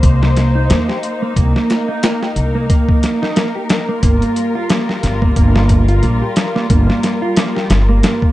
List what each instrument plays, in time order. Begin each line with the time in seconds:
Already playing: string section A#3 D#4 C5
0.03 upright bass C2, clean electric guitar A#3, kick, closed hi-hat
0.23 snare
0.36 snare, closed hi-hat
0.55 clean electric guitar D#4
0.70 upright bass D#2, clean electric guitar A#3, snare, closed hi-hat
0.88 clean electric guitar G4, snare
1.03 closed hi-hat
1.22 clean electric guitar A#3
1.36 upright bass C2, clean electric guitar A#3, string section A#4, kick, closed hi-hat
1.56 snare
1.70 snare, closed hi-hat
1.88 clean electric guitar D#4
2.03 clean electric guitar A#3, snare, closed hi-hat
2.22 clean electric guitar G4, snare
2.36 upright bass C2, closed hi-hat
2.55 clean electric guitar A#3
2.69 clean electric guitar A#3, kick, closed hi-hat
2.89 kick
3.03 snare, closed hi-hat
3.22 clean electric guitar D#4, snare
3.36 clean electric guitar A#3, snare, closed hi-hat
3.55 clean electric guitar G4
3.69 snare, closed hi-hat
3.89 clean electric guitar A#3
4.03 upright bass G1, string section G3 F4, clean electric guitar A#3, kick, closed hi-hat
4.22 closed hi-hat
4.36 closed hi-hat
4.55 clean electric guitar F4
4.70 clean electric guitar A#3, snare, closed hi-hat
4.89 clean electric guitar G4, snare
5.03 upright bass G1, snare, closed hi-hat
5.22 clean electric guitar A#3, kick
5.36 upright bass G1, clean electric guitar A#3, kick, closed hi-hat
5.56 snare
5.69 kick, closed hi-hat
5.88 clean electric guitar F4, closed hi-hat
6.03 upright bass A#1, clean electric guitar A#3, closed hi-hat
6.22 clean electric guitar G4
6.36 snare, closed hi-hat
6.55 clean electric guitar A#3, snare
6.70 upright bass G1, clean electric guitar A#3, kick, closed hi-hat
6.90 snare
7.03 snare, closed hi-hat
7.22 clean electric guitar F4
7.36 clean electric guitar A#3, snare, closed hi-hat
7.55 clean electric guitar G4, snare
7.70 upright bass G1, snare, closed hi-hat
7.89 clean electric guitar A#3
8.03 clean electric guitar A#3, snare, closed hi-hat
8.22 kick